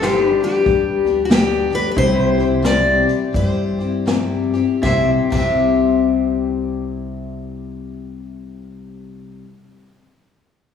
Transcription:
Already playing: G1
0.00 G2 D3 G3 B3 D4 E4 G4 C5, snare, closed hi-hat
0.18 D#4
0.24 B4
0.29 D4
0.41 G3 B3 D4 G4, closed hi-hat
0.65 D2 G3 B3 D4 G4, kick, closed hi-hat
1.05 G3 B3 D4 G4, closed hi-hat
1.25 G2 F#4
1.29 D3 G3 B3 D4 G4, snare, closed hi-hat
1.70 G3 B3 D4 G4, closed hi-hat
1.75 B4
1.91 B4
1.96 C2 C3 G3 C4 E4 G4 B4 C5, kick, closed hi-hat
2.22 C5
2.38 C4 E4 G4, closed hi-hat
2.62 C3 G3 C4 E4 G4 D5, snare, closed hi-hat
3.07 C4 E4 G4, closed hi-hat
3.33 G2 G3 C4 E4 G4 C5, kick, closed hi-hat
3.79 C4 E4 G4, closed hi-hat
4.06 C3 G3 C4 E4 G4, snare, closed hi-hat
4.54 C4 E4 G4, closed hi-hat
4.82 C2 C3 G3 C4 E4 G4 C5 E5, kick, snare
4.88 E4 G4
5.30 C2 C3 G3 C4 E5, kick, crash
5.36 E4 G4

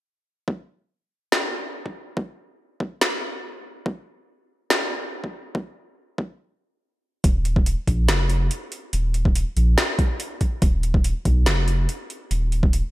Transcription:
0.48 kick
1.32 snare
1.86 kick
2.17 kick
2.80 kick
3.01 snare
3.86 kick
4.70 snare
5.24 kick
5.55 kick
6.18 kick
7.24 D#1, kick, closed hi-hat
7.45 closed hi-hat
7.56 kick
7.66 closed hi-hat
7.87 A#1, kick, closed hi-hat
8.09 F1, snare, closed hi-hat
8.30 closed hi-hat
8.51 closed hi-hat
8.72 closed hi-hat
8.93 D#1, closed hi-hat
9.14 closed hi-hat
9.25 kick
9.35 closed hi-hat
9.56 A#1, closed hi-hat
9.78 snare, closed hi-hat
9.99 kick, closed hi-hat
10.20 closed hi-hat
10.41 kick, closed hi-hat
10.62 D#1, kick, closed hi-hat
10.83 closed hi-hat
10.94 kick
11.04 closed hi-hat
11.25 B1, kick, closed hi-hat
11.46 F1, snare, closed hi-hat
11.68 closed hi-hat
11.89 closed hi-hat
12.10 closed hi-hat
12.31 D#1, closed hi-hat
12.52 closed hi-hat
12.63 kick
12.73 closed hi-hat

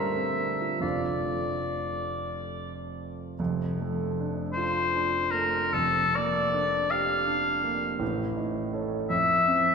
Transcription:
Already playing: G2 D3 A3 A#4 C5 E5 A#5 C6
0.17 C4
0.40 D4
0.61 F4
0.79 F1 F2 A3 C4 D4 D5 F5
0.83 F4
3.39 F1 F2
3.79 A3
4.20 D4
4.53 C5
4.57 F4
4.95 D4
5.31 A3 A#4
5.73 F1 F2 A4
6.15 A#3 D5
6.53 D4
6.90 G4 F5
7.26 D4
7.63 A#3
7.99 A1 A2
8.37 D#4
8.74 A4 C#5
9.10 F2 E5
9.47 C4

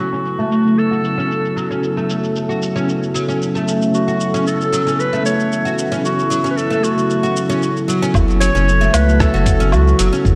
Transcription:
Already playing: C#3 F#3 B3 C#4 E4 F#4 A4
0.13 C#4, shaker
0.26 shaker
0.39 A3, shaker
0.52 shaker
0.65 C#3 F#3 B3 E4 A4, shaker
0.78 A4, shaker
0.91 F#4, shaker
1.02 C#3 F#3 B3 E4 A4, shaker
1.18 C#4, shaker
1.31 shaker
1.45 shaker
1.56 F#3, shaker
1.71 C#4, shaker
1.81 C#3 F#3 B3 E4, shaker
1.85 A4
1.97 A3, shaker
2.10 shaker
2.24 shaker
2.36 shaker
2.49 F#4, shaker
2.62 shaker
2.75 C#3 F#3 B3 C#4 E4 A4, shaker
2.89 shaker
3.03 shaker
3.13 C#3 F#3 B3 E4, shaker
3.17 A4
3.28 C#4, shaker
3.42 shaker
3.55 A3, shaker
3.68 shaker
3.82 shaker
3.91 C#3 F#3 B3 E4 F#4 A4, shaker
4.08 F#4, shaker
4.20 shaker
4.34 C#4, shaker
4.47 A4, shaker
4.61 shaker
4.73 F#3, shaker
4.85 C#3 F#3 B3 C#4 E4 A4, shaker
5.00 B4, shaker
5.13 A3, shaker
5.23 C#3 F#3 B3 E4 A4 C#5, shaker
5.40 shaker
5.52 shaker
5.65 F#4, shaker
5.78 shaker
5.92 C#4, shaker
6.02 C#3 F#3 B3 E4 F#4, shaker
6.06 A4
6.19 shaker
6.30 F#3, shaker
6.44 C#4, shaker
6.51 B4
6.57 A4, shaker
6.70 A3, shaker
6.83 F#4, shaker
6.96 C#3 F#3 B3 E4 A4, shaker
7.10 shaker
7.23 F#4, shaker
7.36 shaker
7.49 C#3 F#3 B3 C#4 E4 F#4, shaker
7.62 shaker
7.77 shaker
7.87 C#3 F#3 B3 E4 F#4, shaker
8.02 C#4, shaker
8.12 F#1 C#3 F#3 B3 E4 F#4 A4, kick, low woodblock, shaker
8.30 shaker
8.40 F#3 C#5, closed hi-hat, shaker
8.55 F#1 C#4, shaker
8.68 shaker
8.81 A3, shaker
8.94 C#2 B4, closed hi-hat, low woodblock, shaker
9.07 C#3 F#3 B3 E4 A4, shaker
9.20 A4, kick, cross-stick, shaker
9.34 F#1 F#4, shaker
9.43 C#3 F#3 B3 E4, kick, closed hi-hat, shaker
9.47 A4
9.60 C#4, shaker
9.72 C#2 F#4, low woodblock, shaker
9.88 shaker
9.99 F#1 F#3, closed hi-hat, shaker
10.13 C#4, shaker
10.23 F#1 C#3 F#3 B3 E4, kick, shaker
10.27 A4

